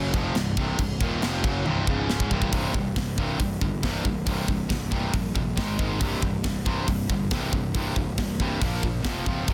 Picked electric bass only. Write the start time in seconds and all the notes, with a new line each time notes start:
Already playing: F#1
0.14 F1
0.35 C1
0.57 C1
0.79 C1
1.01 D#1
1.22 F1
1.44 F#1
1.67 C1
1.87 C#1
2.31 C1
2.53 C1
2.74 C1
2.96 C1
3.18 C1
3.40 C1
3.61 G1
3.83 C1
4.05 C1
4.26 C1
4.48 C1
4.71 C1
5.13 A#1
5.57 G#1
5.80 G#1
6.01 C1
6.22 C1
6.44 C1
6.66 C1
6.88 C1
7.09 G1
7.53 C1
7.75 C1
7.96 C1
8.18 C1
8.61 A#1
9.05 F1
9.27 C#1
9.48 C1